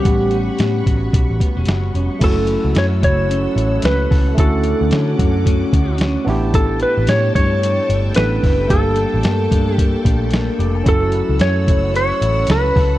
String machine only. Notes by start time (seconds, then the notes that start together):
Already playing: G3 F#5 B5 C#6
2.21 A4 F#5 E6
4.38 C#4 D6
6.28 A4 G5 A5
8.70 A5
10.86 F#5 E6